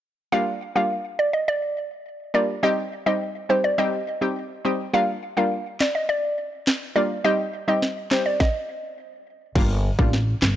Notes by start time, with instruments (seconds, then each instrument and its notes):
0.32 synth pluck G3 A#3 D4 F4 F5
0.75 synth pluck G3 A#3 D4 F4 F5
1.19 synth pluck D5
1.33 synth pluck D#5
1.48 synth pluck D5
2.34 synth pluck G3 A#3 D4 F4 D5
2.63 synth pluck G3 C4 D#4 G4 D#5
3.06 synth pluck G3 C4 D#4 G4 D#5
3.49 synth pluck G3 C4 D#4 G4 C5
3.64 synth pluck D5
3.78 synth pluck G3 C4 D#4 G4 D#5
4.21 synth pluck G3 C4 D#4 G4
4.65 synth pluck G3 C4 D#4 G4
4.93 synth pluck G3 A#3 D4 F4 F5
5.37 synth pluck G3 A#3 D4 F4 F5
5.80 synth pluck D5, snare, clap
5.95 synth pluck D#5
6.09 synth pluck D5
6.67 snare, clap
6.96 synth pluck G3 A#3 D4 F4 D5
7.24 synth pluck G3 C4 D#4 G4 D#5
7.68 synth pluck G3 C4 D#4 G4 D#5
7.82 snare
8.11 synth pluck G3 C4 D#4 G4 C5, snare, clap
8.26 synth pluck D5
8.40 synth pluck D#5, kick, snare
9.55 upright bass G1, synth pluck G3 A#3 D4 F4, kick, crash
9.99 upright bass A1, synth pluck G3 A#3 D4 F4, kick
10.13 snare
10.42 upright bass G1, snare, clap